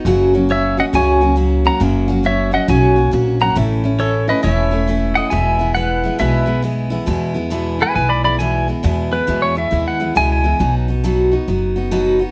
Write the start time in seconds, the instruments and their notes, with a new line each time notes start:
0.05 upright bass F#1, steel-string acoustic guitar F#2 C#3 F#3 A#3 C#4 F#4
0.34 steel-string acoustic guitar F#3 A#3 C#4 F#4
0.49 steel-string acoustic guitar F#3 A#3 C#4 F#4, pedal steel guitar C#5 E5
0.77 steel-string acoustic guitar F#3 A#3 C#4 F#4, pedal steel guitar D#5 F#5
0.93 upright bass C#2, steel-string acoustic guitar F#2 C#3 F#3 A#3 C#4 F#4, pedal steel guitar C#5 G#5
1.21 steel-string acoustic guitar F#3 A#3 C#4 F#4
1.36 steel-string acoustic guitar F#3 A#3 C#4 F#4
1.65 steel-string acoustic guitar F#3 A#3 C#4 F#4, pedal steel guitar F#5 A#5
1.80 upright bass F#1, steel-string acoustic guitar F#2 C#3 F#3 A#3 C#4 F#4
2.08 steel-string acoustic guitar F#3 A#3 C#4 F#4
2.23 steel-string acoustic guitar F#3 A#3 C#4 F#4, pedal steel guitar C#5 E5
2.51 steel-string acoustic guitar F#3 A#3 C#4 F#4, pedal steel guitar D#5 F#5
2.68 upright bass B1, steel-string acoustic guitar F#2 C#3 F#3 A#3 C#4 F#4, pedal steel guitar C#5 G#5
2.96 steel-string acoustic guitar F#3 A#3 C#4 F#4
3.11 upright bass A#1, steel-string acoustic guitar F#3 A#3 C#4 F#4
3.40 steel-string acoustic guitar F#3 A#3 C#4 F#4, pedal steel guitar F#5 A#5
3.55 upright bass A1, steel-string acoustic guitar A2 E3 A3 C#4 E4
3.84 steel-string acoustic guitar A3 C#4 E4
3.99 steel-string acoustic guitar E3 A3 C#4 E4, pedal steel guitar A4 C#5
4.28 steel-string acoustic guitar A3 C#4 E4, pedal steel guitar B4 D#5
4.43 upright bass E1, steel-string acoustic guitar A2 E3 A3 C#4 E4, pedal steel guitar C#5 E5
4.71 steel-string acoustic guitar A3 C#4 E4
4.88 steel-string acoustic guitar E3 A3 C#4 E4
5.15 steel-string acoustic guitar A3 C#4 E4, pedal steel guitar D#5 F#5
5.30 upright bass E1, steel-string acoustic guitar E2 B2 E3 G#3 B3 E4, pedal steel guitar E5 G#5
5.59 steel-string acoustic guitar E3 G#3 B3 E4
5.75 steel-string acoustic guitar E3 G#3 B3 E4, pedal steel guitar B4 F#5
6.04 steel-string acoustic guitar E3 G#3 B3 E4
6.19 upright bass B1, steel-string acoustic guitar E2 B2 E3 G#3 B3 E4, pedal steel guitar B4 E5
6.46 steel-string acoustic guitar E3 G#3 B3 E4
6.62 steel-string acoustic guitar E3 G#3 B3 E4
6.90 steel-string acoustic guitar E3 G#3 B3 E4
7.06 steel-string acoustic guitar E2 B2 E3 G#3 B3 E4, upright bass E2
7.34 steel-string acoustic guitar E3 G#3 B3 E4
7.50 steel-string acoustic guitar E2 B2 E3 G#3 B3 E4
7.79 steel-string acoustic guitar E3 G#3 B3 E4, pedal steel guitar B4 G#5
7.95 upright bass B1, steel-string acoustic guitar E3 G#3 B3 E4, pedal steel guitar B4 G#5
8.09 pedal steel guitar D5 B5
8.24 steel-string acoustic guitar E3 G#3 B3 E4, pedal steel guitar D5 B5
8.39 steel-string acoustic guitar E2 B2 E3 G#3 B3 E4, pedal steel guitar G#5
8.68 steel-string acoustic guitar E3 G#3 B3 E4
8.83 steel-string acoustic guitar E2 B2 E3 G#3 B3 E4, upright bass E2
9.12 steel-string acoustic guitar E3 G#3 B3 E4, pedal steel guitar B4
9.27 steel-string acoustic guitar E2 B2 E3 G#3 B3 E4, upright bass E2
9.42 pedal steel guitar C#5
9.55 steel-string acoustic guitar E3 G#3 B3 E4, pedal steel guitar E5
9.71 upright bass D#2, steel-string acoustic guitar E3 G#3 B3 E4
9.88 pedal steel guitar F#5
10.00 steel-string acoustic guitar E3 G#3 B3 E4
10.15 upright bass C#2, steel-string acoustic guitar E2 B2 E3 G#3 B3 E4, pedal steel guitar G#5
10.32 pedal steel guitar G#5
10.44 steel-string acoustic guitar E3 G#3 B3 E4
10.59 upright bass B1, steel-string acoustic guitar B2 F#3 B3 D#4 F#4
10.88 steel-string acoustic guitar B3 D#4 F#4
11.04 steel-string acoustic guitar B2 F#3 B3 D#4 F#4
11.32 steel-string acoustic guitar B3 D#4 F#4
11.48 upright bass F#1, steel-string acoustic guitar F#3 B3 D#4 F#4
11.76 steel-string acoustic guitar B3 D#4 F#4
11.91 steel-string acoustic guitar B2 F#3 B3 D#4 F#4
12.19 steel-string acoustic guitar B3 D#4 F#4